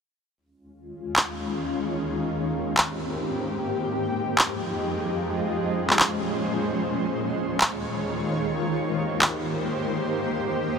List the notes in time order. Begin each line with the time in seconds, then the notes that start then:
0.36 D#2 D#3 G#3 C#4 F4
1.16 clap
1.97 G#2 A#3 C4 G4
2.77 clap
3.58 F2 F3 G#3 D#4
4.38 clap
5.19 A#2 C#4 C5
5.90 clap
6.00 clap
6.80 D#2 D#3 F4 C#5
7.61 clap
8.41 G#2 A#3 G4 C5
9.22 clap
10.02 F2 F3 G#3 G4 D#5